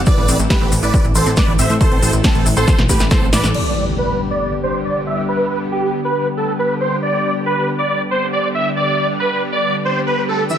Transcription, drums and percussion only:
0.06 kick loud
0.06 closed hi-hat medium
0.06 shaker soft
0.28 open hi-hat loud
0.28 shaker loud
0.39 closed hi-hat medium
0.39 shaker medium
0.50 kick loud
0.50 snare loud
0.50 closed hi-hat medium
0.50 shaker soft
0.72 open hi-hat medium
0.72 shaker medium
0.83 closed hi-hat medium
0.83 shaker medium
0.94 kick loud
0.94 closed hi-hat medium
0.94 shaker soft
1.05 closed hi-hat soft
1.15 open hi-hat loud
1.15 shaker medium
1.26 closed hi-hat medium
1.26 shaker soft
1.36 kick loud
1.36 snare loud
1.36 closed hi-hat medium
1.36 shaker soft
1.59 open hi-hat medium
1.59 shaker medium
1.70 closed hi-hat medium
1.70 shaker medium
1.81 kick loud
1.81 closed hi-hat medium
1.81 shaker soft
1.92 closed hi-hat soft
2.02 open hi-hat loud
2.02 shaker medium
2.13 closed hi-hat medium
2.13 shaker soft
2.24 kick loud
2.24 snare loud
2.24 closed hi-hat medium
2.24 shaker soft
2.35 closed hi-hat soft
2.46 open hi-hat medium
2.46 shaker medium
2.56 closed hi-hat medium
2.56 shaker soft
2.67 kick loud
2.67 snare medium
2.67 closed hi-hat medium
2.67 shaker soft
2.79 snare medium
2.79 closed hi-hat soft
2.89 kick medium
2.89 open hi-hat loud
2.89 shaker medium
2.99 snare medium
2.99 closed hi-hat medium
2.99 shaker soft
3.10 kick loud
3.10 snare medium
3.10 closed hi-hat medium
3.10 shaker soft
3.33 snare loud
3.33 open hi-hat medium
3.33 shaker medium
3.44 snare medium
3.44 closed hi-hat medium
3.44 shaker soft
3.54 crash medium
10.49 shaker soft

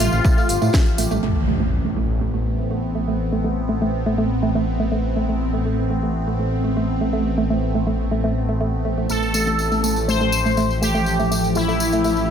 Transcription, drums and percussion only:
0.00 open hi-hat medium
0.00 mid tom medium
0.00 tambourine medium
0.12 tambourine soft
0.24 kick loud
0.24 tambourine medium
0.38 tambourine soft
0.49 open hi-hat loud
0.49 tambourine medium
0.62 tambourine soft
0.74 kick loud
0.74 snare loud
0.74 tambourine medium
0.86 tambourine soft
0.98 open hi-hat loud
0.98 tambourine medium
1.11 mid tom medium
1.11 tambourine soft
9.10 tambourine soft
9.23 tambourine soft
9.34 tambourine medium
9.47 tambourine soft
9.59 tambourine soft
9.72 tambourine soft
9.84 tambourine medium
9.96 tambourine soft
10.09 tambourine soft
10.21 tambourine soft
10.32 tambourine medium
10.46 tambourine soft
10.57 tambourine soft
10.70 tambourine soft
10.83 tambourine medium
10.95 tambourine soft
11.06 tambourine soft
11.20 tambourine soft
11.32 tambourine medium
11.44 tambourine soft
11.55 tambourine soft
11.69 tambourine soft
11.80 tambourine medium
11.92 tambourine soft
12.04 tambourine soft
12.17 tambourine soft

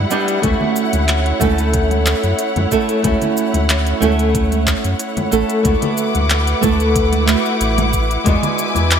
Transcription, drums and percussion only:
0.11 shaker medium
0.28 closed hi-hat soft
0.28 shaker soft
0.43 kick loud
0.43 closed hi-hat medium
0.43 high conga medium
0.43 shaker soft
0.61 low conga medium
0.76 shaker medium
0.93 closed hi-hat soft
0.93 high conga medium
0.93 shaker soft
1.08 clap medium
1.08 closed hi-hat medium
1.08 shaker soft
1.26 closed hi-hat soft
1.41 kick loud
1.41 high conga medium
1.41 shaker medium
1.58 closed hi-hat soft
1.58 shaker soft
1.74 kick loud
1.74 closed hi-hat medium
1.74 shaker soft
1.91 closed hi-hat soft
1.91 high conga medium
1.91 shaker soft
2.06 clap medium
2.06 shaker medium
2.24 closed hi-hat soft
2.24 shaker soft
2.39 closed hi-hat medium
2.39 shaker soft
2.56 closed hi-hat soft
2.56 high conga medium
2.56 low conga medium
2.72 kick medium
2.72 shaker medium
2.89 closed hi-hat soft
2.89 shaker soft
3.04 kick loud
3.04 closed hi-hat medium
3.04 high conga medium
3.04 shaker soft
3.22 closed hi-hat soft
3.22 low conga medium
3.22 shaker soft
3.37 shaker medium
3.54 closed hi-hat soft
3.54 high conga medium
3.54 shaker soft
3.70 clap medium
3.70 closed hi-hat medium
3.70 shaker soft
3.87 closed hi-hat soft
3.87 shaker soft
4.02 high conga medium
4.02 shaker medium
4.19 closed hi-hat soft
4.19 shaker soft
4.35 kick loud
4.35 closed hi-hat medium
4.35 shaker soft
4.52 closed hi-hat soft
4.52 high conga medium
4.52 shaker soft
4.67 kick medium
4.67 clap medium
4.67 shaker medium
4.84 closed hi-hat soft
4.84 shaker soft
5.00 closed hi-hat medium
5.00 shaker soft
5.17 closed hi-hat soft
5.17 high conga medium
5.17 low conga medium
5.17 shaker soft
5.32 shaker medium
5.50 closed hi-hat soft
5.50 shaker soft
5.65 kick loud
5.65 closed hi-hat medium
5.65 high conga medium
5.65 shaker soft
5.82 closed hi-hat soft
5.82 low conga medium
5.82 shaker soft
5.97 shaker medium
6.15 closed hi-hat soft
6.15 high conga medium
6.15 shaker soft
6.30 clap medium
6.30 closed hi-hat medium
6.30 shaker soft
6.47 closed hi-hat soft
6.47 shaker soft
6.63 kick loud
6.63 high conga loud
6.63 shaker medium
6.80 closed hi-hat soft
6.80 shaker soft
6.96 kick loud
6.96 closed hi-hat medium
6.96 shaker soft
7.12 closed hi-hat soft
7.12 high conga medium
7.12 shaker soft
7.28 clap medium
7.28 shaker medium
7.46 shaker soft
7.61 closed hi-hat medium
7.61 shaker soft
7.78 closed hi-hat soft
7.78 high conga medium
7.78 low conga medium
7.78 shaker soft
7.93 kick medium
7.93 shaker medium
8.11 closed hi-hat soft
8.11 shaker soft
8.26 kick loud
8.26 closed hi-hat medium
8.26 high conga loud
8.26 shaker soft
8.43 closed hi-hat soft
8.43 low conga medium
8.43 shaker soft
8.59 shaker medium
8.75 closed hi-hat soft
8.75 high conga medium
8.75 shaker soft
8.91 clap medium
8.91 closed hi-hat medium
8.91 shaker soft

